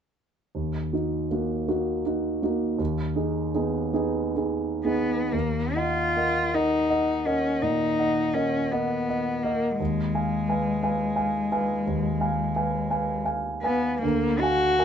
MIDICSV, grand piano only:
0, 0, Header, 1, 2, 480
1, 0, Start_track
1, 0, Key_signature, -6, "minor"
1, 0, Tempo, 748130
1, 352, Time_signature, 12, 3, 24, 8
1, 2272, Tempo, 818554
1, 2752, Tempo, 967742
1, 3232, Tempo, 827586
1, 3712, Tempo, 728155
1, 6112, Tempo, 691244
1, 8512, Tempo, 763359
1, 9514, End_track
2, 0, Start_track
2, 0, Title_t, "Grand piano"
2, 0, Program_c, 0, 0
2, 352, Note_on_c, 0, 39, 24
2, 453, Control_c, 0, 64, 127
2, 586, Note_off_c, 0, 39, 0
2, 596, Note_on_c, 0, 66, 20
2, 598, Note_on_c, 0, 63, 18
2, 814, Note_off_c, 0, 66, 0
2, 816, Note_off_c, 0, 63, 0
2, 840, Note_on_c, 0, 58, 20
2, 847, Note_on_c, 0, 63, 21
2, 849, Note_on_c, 0, 66, 22
2, 1057, Note_off_c, 0, 58, 0
2, 1061, Note_off_c, 0, 63, 0
2, 1061, Note_off_c, 0, 66, 0
2, 1078, Note_on_c, 0, 58, 20
2, 1080, Note_on_c, 0, 63, 21
2, 1081, Note_on_c, 0, 66, 24
2, 1293, Note_off_c, 0, 58, 0
2, 1294, Note_off_c, 0, 63, 0
2, 1294, Note_off_c, 0, 66, 0
2, 1321, Note_on_c, 0, 63, 23
2, 1325, Note_on_c, 0, 66, 25
2, 1533, Note_off_c, 0, 63, 0
2, 1535, Note_off_c, 0, 66, 0
2, 1554, Note_on_c, 0, 58, 23
2, 1558, Note_on_c, 0, 63, 24
2, 1561, Note_on_c, 0, 66, 26
2, 1768, Note_off_c, 0, 58, 0
2, 1770, Note_off_c, 0, 63, 0
2, 1772, Note_off_c, 0, 66, 0
2, 1786, Note_on_c, 0, 39, 34
2, 1803, Control_c, 0, 64, 0
2, 1898, Control_c, 0, 64, 127
2, 2020, Note_off_c, 0, 39, 0
2, 2026, Note_on_c, 0, 63, 25
2, 2029, Note_on_c, 0, 68, 27
2, 2245, Note_off_c, 0, 63, 0
2, 2247, Note_off_c, 0, 68, 0
2, 2274, Note_on_c, 0, 59, 27
2, 2276, Note_on_c, 0, 63, 27
2, 2276, Note_on_c, 0, 68, 30
2, 2480, Note_off_c, 0, 59, 0
2, 2482, Note_off_c, 0, 63, 0
2, 2482, Note_off_c, 0, 68, 0
2, 2501, Note_on_c, 0, 59, 29
2, 2504, Note_on_c, 0, 63, 29
2, 2507, Note_on_c, 0, 68, 32
2, 2728, Note_off_c, 0, 59, 0
2, 2730, Note_off_c, 0, 63, 0
2, 2731, Note_off_c, 0, 68, 0
2, 2752, Note_on_c, 0, 63, 26
2, 2754, Note_on_c, 0, 68, 30
2, 2972, Note_off_c, 0, 63, 0
2, 2973, Note_off_c, 0, 68, 0
2, 2992, Note_on_c, 0, 59, 23
2, 2995, Note_on_c, 0, 63, 25
2, 2997, Note_on_c, 0, 68, 26
2, 3212, Note_off_c, 0, 59, 0
2, 3213, Note_off_c, 0, 63, 0
2, 3214, Note_off_c, 0, 68, 0
2, 3231, Note_on_c, 0, 39, 27
2, 3246, Control_c, 0, 64, 0
2, 3376, Control_c, 0, 64, 127
2, 3473, Note_off_c, 0, 39, 0
2, 3482, Note_on_c, 0, 75, 20
2, 3485, Note_on_c, 0, 78, 22
2, 3689, Note_off_c, 0, 75, 0
2, 3691, Note_off_c, 0, 78, 0
2, 3720, Note_on_c, 0, 70, 20
2, 3720, Note_on_c, 0, 75, 22
2, 3723, Note_on_c, 0, 78, 21
2, 3939, Note_off_c, 0, 70, 0
2, 3940, Note_off_c, 0, 75, 0
2, 3941, Note_off_c, 0, 78, 0
2, 3965, Note_on_c, 0, 70, 22
2, 3969, Note_on_c, 0, 75, 21
2, 3974, Note_on_c, 0, 78, 23
2, 4179, Note_off_c, 0, 70, 0
2, 4182, Note_off_c, 0, 75, 0
2, 4184, Note_off_c, 0, 78, 0
2, 4203, Note_on_c, 0, 75, 22
2, 4205, Note_on_c, 0, 78, 25
2, 4417, Note_off_c, 0, 75, 0
2, 4418, Note_off_c, 0, 78, 0
2, 4441, Note_on_c, 0, 70, 22
2, 4445, Note_on_c, 0, 75, 22
2, 4447, Note_on_c, 0, 78, 22
2, 4656, Note_off_c, 0, 70, 0
2, 4658, Note_off_c, 0, 75, 0
2, 4659, Note_off_c, 0, 78, 0
2, 4682, Note_on_c, 0, 46, 25
2, 4912, Note_off_c, 0, 46, 0
2, 4920, Note_on_c, 0, 75, 20
2, 4925, Note_on_c, 0, 78, 22
2, 5133, Note_off_c, 0, 75, 0
2, 5136, Note_off_c, 0, 78, 0
2, 5156, Note_on_c, 0, 70, 22
2, 5160, Note_on_c, 0, 75, 21
2, 5162, Note_on_c, 0, 78, 24
2, 5373, Note_off_c, 0, 70, 0
2, 5376, Note_off_c, 0, 75, 0
2, 5377, Note_off_c, 0, 78, 0
2, 5407, Note_on_c, 0, 70, 23
2, 5408, Note_on_c, 0, 75, 24
2, 5411, Note_on_c, 0, 78, 26
2, 5621, Note_off_c, 0, 70, 0
2, 5622, Note_off_c, 0, 75, 0
2, 5624, Note_off_c, 0, 78, 0
2, 5649, Note_on_c, 0, 75, 22
2, 5650, Note_on_c, 0, 78, 24
2, 5860, Note_off_c, 0, 75, 0
2, 5860, Note_off_c, 0, 78, 0
2, 5880, Note_on_c, 0, 70, 22
2, 5880, Note_on_c, 0, 75, 23
2, 5886, Note_on_c, 0, 78, 24
2, 6089, Note_off_c, 0, 70, 0
2, 6089, Note_off_c, 0, 75, 0
2, 6093, Note_off_c, 0, 78, 0
2, 6114, Note_on_c, 0, 39, 29
2, 6123, Control_c, 0, 64, 0
2, 6239, Control_c, 0, 64, 127
2, 6346, Note_off_c, 0, 39, 0
2, 6356, Note_on_c, 0, 77, 21
2, 6358, Note_on_c, 0, 80, 25
2, 6566, Note_off_c, 0, 77, 0
2, 6567, Note_off_c, 0, 80, 0
2, 6589, Note_on_c, 0, 71, 24
2, 6595, Note_on_c, 0, 77, 25
2, 6596, Note_on_c, 0, 80, 26
2, 6800, Note_off_c, 0, 71, 0
2, 6803, Note_off_c, 0, 77, 0
2, 6804, Note_off_c, 0, 80, 0
2, 6828, Note_on_c, 0, 71, 25
2, 6831, Note_on_c, 0, 77, 26
2, 6833, Note_on_c, 0, 80, 27
2, 7041, Note_off_c, 0, 71, 0
2, 7043, Note_off_c, 0, 77, 0
2, 7044, Note_off_c, 0, 80, 0
2, 7059, Note_on_c, 0, 77, 25
2, 7060, Note_on_c, 0, 80, 28
2, 7281, Note_off_c, 0, 77, 0
2, 7282, Note_off_c, 0, 80, 0
2, 7308, Note_on_c, 0, 71, 25
2, 7310, Note_on_c, 0, 80, 28
2, 7311, Note_on_c, 0, 77, 27
2, 7526, Note_off_c, 0, 71, 0
2, 7527, Note_off_c, 0, 77, 0
2, 7527, Note_off_c, 0, 80, 0
2, 7553, Note_on_c, 0, 39, 30
2, 7780, Note_off_c, 0, 39, 0
2, 7786, Note_on_c, 0, 77, 26
2, 7788, Note_on_c, 0, 80, 27
2, 7997, Note_off_c, 0, 77, 0
2, 7999, Note_off_c, 0, 80, 0
2, 8030, Note_on_c, 0, 71, 26
2, 8032, Note_on_c, 0, 77, 26
2, 8034, Note_on_c, 0, 80, 29
2, 8243, Note_off_c, 0, 71, 0
2, 8244, Note_off_c, 0, 77, 0
2, 8245, Note_off_c, 0, 80, 0
2, 8268, Note_on_c, 0, 71, 29
2, 8268, Note_on_c, 0, 77, 28
2, 8274, Note_on_c, 0, 80, 31
2, 8490, Note_off_c, 0, 77, 0
2, 8491, Note_off_c, 0, 71, 0
2, 8494, Note_off_c, 0, 80, 0
2, 8511, Note_on_c, 0, 77, 29
2, 8514, Note_on_c, 0, 80, 31
2, 8725, Note_off_c, 0, 77, 0
2, 8727, Note_off_c, 0, 80, 0
2, 8750, Note_on_c, 0, 71, 29
2, 8753, Note_on_c, 0, 77, 27
2, 8757, Note_on_c, 0, 80, 33
2, 8973, Note_off_c, 0, 71, 0
2, 8975, Note_off_c, 0, 77, 0
2, 8977, Note_off_c, 0, 80, 0
2, 9001, Note_on_c, 0, 38, 38
2, 9010, Control_c, 0, 64, 0
2, 9140, Control_c, 0, 64, 127
2, 9237, Note_off_c, 0, 38, 0
2, 9252, Note_on_c, 0, 80, 29
2, 9253, Note_on_c, 0, 77, 26
2, 9457, Note_off_c, 0, 80, 0
2, 9458, Note_off_c, 0, 77, 0
2, 9478, Note_on_c, 0, 70, 29
2, 9481, Note_on_c, 0, 77, 28
2, 9482, Note_on_c, 0, 80, 29
2, 9514, Note_off_c, 0, 70, 0
2, 9514, Note_off_c, 0, 77, 0
2, 9514, Note_off_c, 0, 80, 0
2, 9514, End_track
0, 0, End_of_file